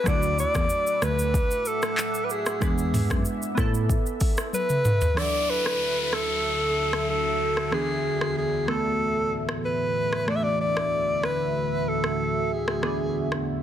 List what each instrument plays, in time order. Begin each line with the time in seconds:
0.04 tine electric piano D2, synth keys F#3 A3 D4 E4, ambient pad A3 E5 F#5 D6, kick, cross-stick, shaker
0.08 synth keys F#4, alto saxophone D5
0.22 shaker
0.39 alto saxophone D5, shaker
0.55 tine electric piano E2, kick, cross-stick, shaker
0.69 shaker
0.87 shaker
1.02 tine electric piano D2, alto saxophone B4, cross-stick, shaker
1.19 shaker
1.34 kick, shaker
1.51 shaker
1.65 alto saxophone A4, shaker
1.82 cross-stick, shaker
1.98 clap, shaker
2.14 shaker
2.24 alto saxophone B4
2.30 alto saxophone G#4, shaker
2.46 cross-stick, shaker
2.60 tine electric piano E2, synth keys G#3 B3 D4 E4 B4, ambient pad B4 G#5, kick, cross-stick, shaker
2.78 shaker
2.94 mid tom, open hi-hat, shaker
3.10 tine electric piano F#2, kick, cross-stick, shaker
3.25 shaker
3.42 shaker
3.55 tine electric piano A2, synth keys B3 E4, ambient pad B4 A5 E6, kick, cross-stick, shaker
3.60 synth keys A4
3.74 shaker
3.89 kick, shaker
4.06 shaker
4.21 kick, open hi-hat, shaker
4.37 cross-stick, shaker
4.53 alto saxophone B4, high tom, shaker
4.69 mid tom, shaker
4.85 mid tom, shaker
5.01 floor tom, shaker
5.14 ambient pad D2 D3 F#4 A4 E5, synth keys E3 D4 E4, alto saxophone D5, cross-stick, downlifter
5.19 synth keys F#3 A4
5.50 alto saxophone B4
5.66 cross-stick
6.13 alto saxophone A4, cross-stick
6.93 cross-stick
7.10 alto saxophone A4
7.57 cross-stick
7.71 ambient pad E2 E3 G#4 D5, synth keys E3 B3 D4 G#4, alto saxophone G#4, cross-stick
8.21 cross-stick
8.38 alto saxophone G#4
8.66 ambient pad A2 E3 B3 A4 E5, synth keys E3 A3 B3, alto saxophone A4, cross-stick
8.71 synth keys A4
9.49 cross-stick
9.65 alto saxophone B4
10.13 cross-stick
10.26 ambient pad D2 D3 A3 F#4, synth keys E3 A3 D4, alto saxophone D5, cross-stick
10.30 synth keys F#4
10.36 alto saxophone E5
10.43 alto saxophone D5
10.61 alto saxophone D5
10.77 cross-stick
11.24 alto saxophone B4, cross-stick
11.89 alto saxophone A4
12.04 cross-stick
12.53 alto saxophone G#4
12.68 cross-stick
12.82 ambient pad E2 E3 G#3 F#4 D5, synth keys E3 B3 D4 G#4, cross-stick
13.32 cross-stick